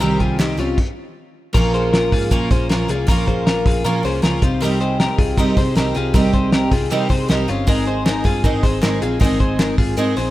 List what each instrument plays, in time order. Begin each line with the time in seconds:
0.00 picked electric bass C2, twelve-string acoustic guitar C3 D#3 G3 C4 G4, clean electric guitar G4 A#4, closed hi-hat
0.20 clean electric guitar F4 G#4, kick, closed hi-hat
0.39 twelve-string acoustic guitar D#3 G3 C4 G4, clean electric guitar D#4 G4, snare, clap, closed hi-hat
0.57 picked electric bass C2, twelve-string acoustic guitar G3 C4 G4, clean electric guitar C#4 F4, closed hi-hat
0.78 kick, crash
1.53 picked electric bass A#1, twelve-string acoustic guitar A#2 F3 A#3 C#4, clean electric guitar F4 A#4, kick, crash
1.57 twelve-string acoustic guitar F4
1.74 clean electric guitar G#4 C5, hi-hat pedal, open hi-hat
1.93 clean electric guitar F4 A#4, snare, hi-hat pedal, open hi-hat
2.12 picked electric bass G#2, clean electric guitar F4 G#4, kick, hi-hat pedal, open hi-hat
2.31 twelve-string acoustic guitar A#2 F3 A#3 C#4 F4, picked electric bass A#2, clean electric guitar F4 A#4, kick, hi-hat pedal, open hi-hat
2.50 picked electric bass A#1, twelve-string acoustic guitar A#3 C#4 F4, clean electric guitar G#4 C5, kick, hi-hat pedal, open hi-hat
2.69 picked electric bass A#1, twelve-string acoustic guitar F3 A#3 C#4 F4, clean electric guitar F4 A#4, snare, hi-hat pedal, open hi-hat
2.88 picked electric bass C2, twelve-string acoustic guitar A#3 C#4 F4, clean electric guitar F4 G#4, hi-hat pedal, open hi-hat
3.07 picked electric bass A#1, twelve-string acoustic guitar A#2 F3 A#3 C#4, clean electric guitar F4 A#4, kick, hi-hat pedal, open hi-hat
3.11 twelve-string acoustic guitar F4
3.27 clean electric guitar G#4 C5, kick, hi-hat pedal, open hi-hat
3.47 clean electric guitar F4 A#4, snare, hi-hat pedal, open hi-hat
3.66 picked electric bass A#1, clean electric guitar F4 G#4, kick, hi-hat pedal, open hi-hat
3.84 twelve-string acoustic guitar A#2 F3 A#3 C#4 F4, picked electric bass A#2, clean electric guitar F4 A#4, hi-hat pedal, open hi-hat
4.03 picked electric bass C2, twelve-string acoustic guitar A#3 C#4 F4, clean electric guitar G#4 C5, hi-hat pedal, open hi-hat
4.22 picked electric bass C#2, twelve-string acoustic guitar F3 A#3 C#4 F4, clean electric guitar F4 A#4, snare, hi-hat pedal, open hi-hat
4.42 picked electric bass C2, clean electric guitar C4 F4, twelve-string acoustic guitar C4 D#4 G4, kick, hi-hat pedal, open hi-hat
4.61 twelve-string acoustic guitar C3 G3 C4 D#4, clean electric guitar G4 A#4, hi-hat pedal, open hi-hat
4.65 twelve-string acoustic guitar G4
4.80 clean electric guitar G#4 C5, hi-hat pedal, open hi-hat
5.00 clean electric guitar G4 A#4, snare, hi-hat pedal, open hi-hat
5.19 picked electric bass C2, clean electric guitar F4 G#4, kick, hi-hat pedal, open hi-hat
5.37 picked electric bass C3, twelve-string acoustic guitar C3 G3 C4 D#4 G4, clean electric guitar G4 A#4, kick, hi-hat pedal, open hi-hat
5.57 picked electric bass C3, twelve-string acoustic guitar C4 D#4 G4, clean electric guitar G#4 C5, kick, hi-hat pedal, open hi-hat
5.75 picked electric bass C2, twelve-string acoustic guitar G3 C4 D#4 G4, clean electric guitar G4 A#4, snare, hi-hat pedal, open hi-hat
5.94 picked electric bass C2, twelve-string acoustic guitar C4 D#4 G4, clean electric guitar F4 G#4, hi-hat pedal, open hi-hat
6.14 picked electric bass C2, twelve-string acoustic guitar C3 G3 C4 D#4 G4, clean electric guitar G4 A#4, kick, hi-hat pedal, open hi-hat
6.33 clean electric guitar G#4 C5, kick, hi-hat pedal, open hi-hat
6.52 clean electric guitar G4 A#4, snare, hi-hat pedal, open hi-hat
6.71 picked electric bass C2, twelve-string acoustic guitar C4 D#4 G4, clean electric guitar F4 G#4, kick, hi-hat pedal, open hi-hat
6.90 twelve-string acoustic guitar C3 G3 C4 D#4 G4, picked electric bass C3, clean electric guitar G4 A#4, hi-hat pedal, open hi-hat
7.09 picked electric bass C3, twelve-string acoustic guitar C4 D#4 G4, clean electric guitar G#4 C5, kick, hi-hat pedal, open hi-hat
7.28 picked electric bass C2, twelve-string acoustic guitar G3 C4 D#4 G4, clean electric guitar G4 A#4, snare, hi-hat pedal, open hi-hat
7.48 picked electric bass G1, twelve-string acoustic guitar C4 D#4 G4, clean electric guitar C#4 F4, hi-hat pedal, open hi-hat
7.67 picked electric bass G#1, twelve-string acoustic guitar G#3 C4 D#4 G#4, clean electric guitar D#4 A#4, kick, hi-hat pedal, open hi-hat
7.86 clean electric guitar G#4 C5, hi-hat pedal, open hi-hat
8.06 clean electric guitar D#4 A#4, snare, clap, hi-hat pedal, open hi-hat
8.24 picked electric bass G2, twelve-string acoustic guitar C4 D#4 G#4, clean electric guitar F4 G#4, kick, hi-hat pedal, open hi-hat
8.44 picked electric bass G#2, twelve-string acoustic guitar G#3 C4 D#4 G#4, clean electric guitar D#4 A#4, kick, hi-hat pedal, open hi-hat
8.63 picked electric bass G#1, twelve-string acoustic guitar C4 D#4 G#4, clean electric guitar G#4 C5, kick, clap, hi-hat pedal, open hi-hat
8.82 picked electric bass G#1, twelve-string acoustic guitar G#3 C4 D#4 G#4, clean electric guitar D#4 A#4, snare, clap, hi-hat pedal, open hi-hat
9.02 picked electric bass A#1, twelve-string acoustic guitar C4 D#4 G#4, clean electric guitar F4 G#4, hi-hat pedal, open hi-hat
9.20 picked electric bass G#1, twelve-string acoustic guitar G#3 C4 D#4, clean electric guitar D#4 A#4, kick, hi-hat pedal, open hi-hat
9.24 twelve-string acoustic guitar G#4
9.40 clean electric guitar G#4 C5, kick, hi-hat pedal, open hi-hat
9.59 clean electric guitar D#4 A#4, snare, clap, hi-hat pedal, open hi-hat
9.78 picked electric bass G#1, clean electric guitar F4 G#4, kick, hi-hat pedal, open hi-hat
9.97 picked electric bass G#2, twelve-string acoustic guitar G#3 C4 D#4 G#4, clean electric guitar D#4 A#4, hi-hat pedal, open hi-hat
10.17 picked electric bass A#1, twelve-string acoustic guitar C4 D#4 G#4, clean electric guitar G#4 C5, clap, hi-hat pedal, open hi-hat